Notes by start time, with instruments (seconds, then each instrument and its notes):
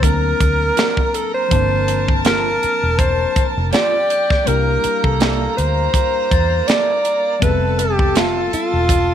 Already playing: glockenspiel A6
0.01 fingered electric bass D2, tine electric piano F#3 A#3 C4 D4, alto saxophone A#4, violin section A#4 A#5, kick, closed hi-hat
0.06 tine electric piano A#4
0.40 fingered electric bass D2, kick, closed hi-hat
0.77 clean electric guitar C4 F#4 A#4 D5, snare, closed hi-hat
0.97 kick
1.14 alto saxophone A4, closed hi-hat
1.34 alto saxophone C5
1.49 fingered electric bass G1, tine electric piano F3 A#3 C4 D4, violin section A#4 A5, kick, closed hi-hat
1.53 tine electric piano A5
1.88 closed hi-hat
2.08 kick
2.24 clean electric guitar A#3 F4 A4 C5, alto saxophone A#4, glockenspiel F6, snare, closed hi-hat
2.63 muted fingered electric bass stroke, closed hi-hat
2.83 fingered electric bass E1
2.99 alto saxophone C5, kick, closed hi-hat
3.36 muted fingered electric bass stroke, kick, closed hi-hat
3.57 fingered electric bass F1
3.72 clean electric guitar A#3 F4 A4 C5, violin section G4 G5, alto saxophone D5, snare, closed hi-hat
4.10 glockenspiel G6, closed hi-hat
4.30 kick, snare
4.44 fingered electric bass C2, tine electric piano G3 A#3 D4 E4, violin section A#3 A#5, alto saxophone A#4, closed hi-hat
4.49 tine electric piano G4
4.84 muted fingered electric bass stroke, closed hi-hat
5.04 fingered electric bass C2, alto saxophone A4, kick
5.20 clean electric guitar A#3 E4 A4 D5, snare, closed hi-hat
5.57 fingered electric bass D2, alto saxophone C5, closed hi-hat
5.94 kick, closed hi-hat
6.31 fingered electric bass E2, glockenspiel A6, kick, closed hi-hat
6.68 clean electric guitar A#3 E4 A4 D5, alto saxophone D5, snare, closed hi-hat
7.05 closed hi-hat
7.39 fingered electric bass F1, tine electric piano G3 B3 C4 E5, alto saxophone B4, kick, closed hi-hat
7.44 tine electric piano G#4, violin section A4 A5
7.50 tine electric piano A4
7.79 alto saxophone G4, closed hi-hat
7.99 kick
8.15 clean electric guitar B3 G4 A4 E5, alto saxophone F4, snare, closed hi-hat
8.53 alto saxophone F4, muted fingered electric bass stroke, closed hi-hat
8.73 fingered electric bass E1
8.89 kick, closed hi-hat